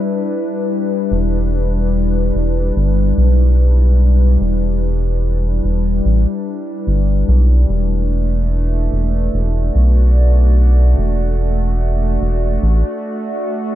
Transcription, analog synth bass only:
1.11 2.31 E1 medium
2.35 2.72 E1 medium
2.76 3.13 G1 medium
3.17 4.37 B1 medium
4.40 5.60 E1 medium
5.64 6.01 E1 medium
6.05 6.26 A1 medium
6.87 7.24 G1 medium
7.28 7.65 B1 loud
7.69 8.89 E1 medium
8.92 9.29 E1 medium
9.34 9.71 E1 medium
9.75 10.95 B1 medium
10.98 12.18 E1 medium
12.21 12.58 E1 medium
12.62 12.83 A1 medium

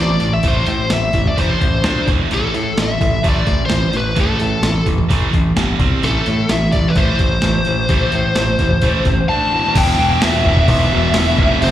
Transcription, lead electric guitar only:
0.00 0.34 D5 loud
0.33 0.45 E5 medium
0.48 0.90 C5 medium
0.93 1.28 E5 loud
1.27 1.39 D5 medium
1.39 2.08 C5 medium
2.34 2.81 A4 medium
2.82 3.28 E5 loud
3.29 3.62 D5 medium
3.66 3.97 C5 medium
3.97 4.20 B4 medium
4.21 4.85 A4 medium
6.04 6.52 A4 medium
6.51 6.72 E5 loud
6.72 6.90 D5 medium
6.88 6.96 B4 medium
6.98 9.26 C5 medium
9.29 9.77 A5 loud
9.78 10.20 G5 loud
10.24 10.69 E5 loud
10.70 11.58 E5 medium
11.64 11.71 C5 medium

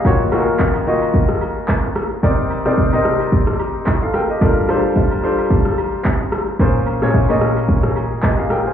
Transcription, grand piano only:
0.00 0.19 G#4 medium
0.00 0.19 F5 medium
0.05 0.27 D#3 medium
0.05 0.28 A#3 medium
0.05 0.28 F4 medium
0.05 0.28 F#4 medium
0.05 0.28 C#5 medium
0.32 0.77 D#3 medium
0.32 0.77 A#3 medium
0.32 0.77 F4 medium
0.32 0.77 F#4 medium
0.32 0.40 G#4 medium
0.40 0.81 A#4 medium
0.87 1.75 D#3 medium
0.87 1.75 A#3 medium
0.87 1.75 F4 medium
0.87 1.75 F#4 medium
0.87 1.75 D#5 medium
2.23 2.56 C3 medium
2.23 2.56 C4 medium
2.23 2.57 D#4 medium
2.23 2.57 A#4 medium
2.23 2.57 D5 medium
2.65 2.87 C3 medium
2.65 2.87 C4 medium
2.65 2.87 D#4 medium
2.65 2.87 A#4 medium
2.65 2.87 D5 medium
2.93 3.79 C3 medium
2.93 3.80 C4 medium
2.93 3.80 D#4 medium
2.93 3.80 A#4 medium
2.93 3.80 D#5 loud
4.02 4.14 A4 medium
4.02 4.14 F5 medium
4.15 4.29 A#4 medium
4.15 4.29 G5 medium
4.30 4.56 G4 medium
4.30 4.55 D#5 medium
4.41 4.64 G3 medium
4.41 4.64 D4 medium
4.41 4.64 F4 medium
4.41 4.64 A4 medium
4.41 4.64 A#4 medium
4.69 5.13 G3 medium
4.69 5.13 D4 medium
4.69 5.14 F4 medium
4.69 5.14 A4 medium
4.69 5.14 C5 loud
5.23 6.11 G3 medium
5.23 6.11 D4 medium
5.23 6.11 F4 medium
5.23 6.11 A4 medium
5.23 6.11 C5 medium
6.60 6.93 A#2 medium
6.60 6.93 A#3 medium
6.60 6.93 C#4 medium
6.60 6.93 G#4 medium
6.60 6.93 C5 medium
7.02 7.23 A#2 medium
7.02 7.23 A#3 medium
7.02 7.23 C#4 medium
7.02 7.23 G#4 medium
7.02 7.24 C#5 medium
7.29 8.16 A#2 medium
7.29 8.16 A#3 medium
7.29 8.16 C#4 medium
7.29 7.96 G#4 medium
7.29 7.97 D#5 loud
8.24 8.38 G4 medium
8.24 8.38 D#5 medium
8.39 8.50 G#4 medium
8.39 8.50 F5 medium
8.51 8.65 A#4 medium
8.51 8.65 G5 medium
8.66 8.73 C5 medium
8.66 8.73 G#5 medium

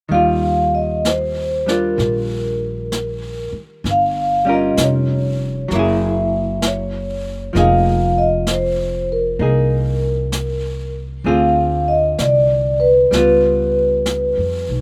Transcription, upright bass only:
0.11 1.94 D#2 medium
1.98 3.49 A#1 medium
3.52 muted upright bass stroke soft
3.84 4.74 G1 medium
4.77 5.67 F1 medium
5.70 7.51 F#1 medium
7.55 9.36 F1 medium
9.39 11.20 C2 medium
11.24 12.14 D2 medium
12.19 13.08 C2 medium
13.12 14.33 C#2 medium
14.38 14.66 F2 soft
14.69 14.81 B1 medium

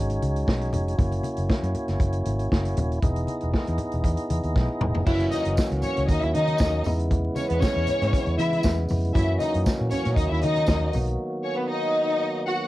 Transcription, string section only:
5.06 5.18 E4 medium
5.06 5.17 E5 medium
5.31 5.42 D#4 medium
5.31 5.43 D#5 medium
5.83 6.04 C#4 medium
5.83 6.03 C#5 medium
6.08 6.20 D#4 medium
6.08 6.19 D#5 medium
6.22 6.32 E4 medium
6.22 6.32 E5 medium
6.33 6.82 D#4 loud
6.33 6.82 D#5 loud
7.36 7.47 C#4 medium
7.36 7.47 C#5 medium
7.49 7.59 B3 medium
7.49 7.59 B4 loud
7.60 8.34 C#4 medium
7.60 8.34 C#5 loud
8.38 8.59 E4 medium
8.38 8.59 E5 medium
9.14 9.26 E4 medium
9.14 9.26 E5 loud
9.39 9.51 D#4 medium
9.39 9.51 D#5 medium
9.91 10.12 C#4 medium
9.91 10.12 C#5 medium
10.15 10.27 D#4 medium
10.15 10.27 D#5 medium
10.31 10.41 E4 medium
10.31 10.40 E5 medium
10.42 10.91 D#4 loud
10.42 10.91 D#5 loud
11.44 11.55 C#4 medium
11.44 11.55 C#5 medium
11.57 11.67 B3 loud
11.57 11.68 B4 loud
11.70 12.43 D#4 loud
11.70 12.43 D#5 loud
12.47 12.67 F#4 medium
12.47 12.67 F#5 medium

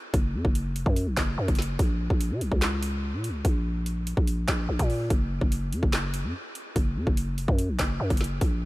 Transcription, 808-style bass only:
0.14 0.36 F#1 loud
0.34 0.44 F#2 loud
0.45 0.77 F#1 loud
0.76 0.86 F1 loud
0.86 1.08 F#2 loud
1.07 1.17 A#1 loud
1.17 1.37 F#1 loud
1.38 1.48 F#2 loud
1.48 1.78 F#1 loud
1.79 2.09 A#1 loud
2.10 2.32 A#1 loud
2.31 2.43 C#3 loud
2.41 2.51 A#1 loud
2.52 3.15 C#2 loud
3.14 3.31 A#2 loud
3.29 3.44 C#2 loud
3.45 4.14 A#1 loud
4.17 4.47 A#1 loud
4.48 4.68 A#1 loud
4.69 4.79 A#1 loud
4.79 5.09 A#2 loud
5.10 5.40 F#1 loud
5.41 5.74 F#1 loud
5.72 5.82 F#2 loud
5.83 6.25 F#1 loud
6.24 6.34 F#2 loud
6.76 6.98 F#1 loud
6.96 7.06 F#2 loud
7.07 7.39 F#1 loud
7.38 7.48 F1 loud
7.48 7.70 F#2 loud
7.69 7.79 A#1 loud
7.79 7.99 F#1 loud
8.00 8.10 F#2 loud
8.10 8.40 F#1 loud
8.41 8.65 A#1 loud

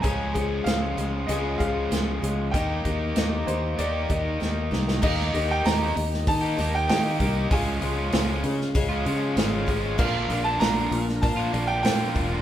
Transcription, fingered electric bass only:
0.04 0.59 C#2 medium
0.66 0.94 C#2 medium
0.98 1.26 C#2 medium
1.29 1.57 C#2 medium
1.60 1.88 C#2 medium
1.92 2.19 C#2 medium
2.23 2.51 C#2 medium
2.54 2.82 D#2 medium
2.85 3.13 D#2 medium
3.17 3.44 D#2 medium
3.48 3.75 D#2 medium
3.79 4.06 D#2 medium
4.10 4.37 D#2 medium
4.42 4.69 D#2 medium
4.72 4.99 C2 loud
5.03 5.33 D#2 loud
5.35 5.64 D#2 medium
5.65 5.95 D#2 medium
5.96 6.26 D#2 medium
6.27 6.57 D#3 medium
6.58 6.88 D#2 medium
6.90 7.19 D#3 medium
7.20 7.50 C2 loud
7.51 7.81 C#2 medium
7.82 8.12 C#2 medium
8.14 8.43 C#2 medium
8.44 8.74 C#3 medium
8.75 9.05 C#2 medium
9.06 9.36 C#3 medium
9.36 9.96 G#1 medium
9.99 10.29 A#1 loud
10.30 10.60 A#1 medium
10.61 10.91 A#1 medium
10.91 11.21 A#1 medium
11.23 11.53 A#2 loud
11.54 11.83 A#1 loud
11.84 12.14 A#2 medium
12.16 12.42 E1 loud

